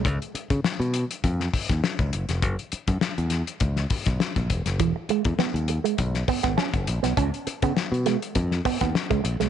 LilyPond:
<<
  \new Staff \with { instrumentName = "Clean electric guitar" } { \time 4/4 \key des \major \tempo 4 = 101 r1 | r1 | e16 r16 gis16 r16 b16 r8 gis16 r8 b16 b16 des'16 r8 b16 | des'16 r8 ces'16 r8 aes16 r8. ces'16 ces'16 r16 aes16 r16 aes16 | }
  \new Staff \with { instrumentName = "Fingered electric bass" } { \clef bass \time 4/4 \key des \major des,16 r8 des16 r16 ces8 r16 f,8 r16 ees,16 r16 des,16 ges,,16 f,,16 | ges,,16 r8 ges,16 r16 fes,8 r16 des,8 r16 ces,16 r16 bes,,16 fes,,16 ges,,16 | e,,16 r8 e,16 r16 dis,8 r16 b,,8 r16 gis,,16 r16 ges,,16 bes,,16 b,,16 | des,16 r8 des16 r16 ces8 r16 f,8 r16 ees,16 r16 des,16 bes,,16 ces,16 | }
  \new DrumStaff \with { instrumentName = "Drums" } \drummode { \time 4/4 <hh bd>16 hh16 hh16 <hh bd>16 sn16 hh16 hh16 hh16 <hh bd>16 sn16 <hho bd>16 <hh bd sn>16 sn16 <hh bd>16 hh16 <hh sn>16 | <hh bd>16 hh16 hh16 <hh bd>16 sn16 hh16 <hh sn>16 hh16 <hh bd>16 <hh sn>16 <hho bd>16 <hh bd sn>16 sn16 <hh bd>16 <hh bd>16 <hh sn>16 | <hh bd>8 hh16 <hh bd>16 sn16 hh16 hh16 hh16 <hh bd>16 <hh sn>16 <hho bd>16 <hh bd sn>16 sn16 <hh bd>16 hh16 <hh sn>16 | <hh bd>16 hh16 hh16 <hh bd>16 sn16 hh16 <hh sn>16 hh16 <hh bd>16 sn16 <hho bd>16 <hh bd sn>16 sn16 <hh bd>16 hh16 <hh sn>16 | }
>>